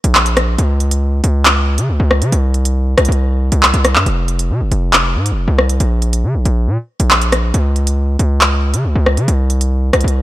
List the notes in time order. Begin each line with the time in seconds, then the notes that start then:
0.04 A#1, closed hi-hat
0.15 clap
0.26 closed hi-hat
0.37 cross-stick, closed hi-hat
0.58 C#2, closed hi-hat
0.80 closed hi-hat
0.91 closed hi-hat
1.24 C#2, closed hi-hat
1.45 clap
1.78 C#3, closed hi-hat
1.89 C#2
2.00 C#2
2.11 cross-stick
2.22 C#3, closed hi-hat
2.32 C2, closed hi-hat
2.54 closed hi-hat
2.65 closed hi-hat
2.98 C2, cross-stick, closed hi-hat
3.05 C2, closed hi-hat
3.12 closed hi-hat
3.52 C2, closed hi-hat
3.63 clap
3.74 C2, closed hi-hat
3.85 cross-stick, closed hi-hat
3.95 G2, clap
4.06 F1, closed hi-hat
4.28 closed hi-hat
4.39 closed hi-hat
4.50 C3
4.61 F1
4.71 F1, closed hi-hat
4.93 clap
5.15 G#2
5.26 closed hi-hat
5.31 F1
5.48 C2
5.58 cross-stick
5.69 closed hi-hat
5.80 A#1, closed hi-hat
6.02 closed hi-hat
6.13 closed hi-hat
6.24 C#3
6.35 A#1
6.45 A#1, closed hi-hat
6.67 A#2
7.00 A#1, closed hi-hat
7.11 clap
7.21 closed hi-hat
7.32 cross-stick, closed hi-hat
7.54 C#2, closed hi-hat
7.76 closed hi-hat
7.87 closed hi-hat
8.19 C#2, closed hi-hat
8.41 clap
8.74 C#3, closed hi-hat
8.85 C#2
8.95 C#2
9.06 cross-stick
9.17 C#3, closed hi-hat
9.28 C2, closed hi-hat
9.50 closed hi-hat
9.61 closed hi-hat
9.93 C2, cross-stick, closed hi-hat
10.01 C2, closed hi-hat
10.08 closed hi-hat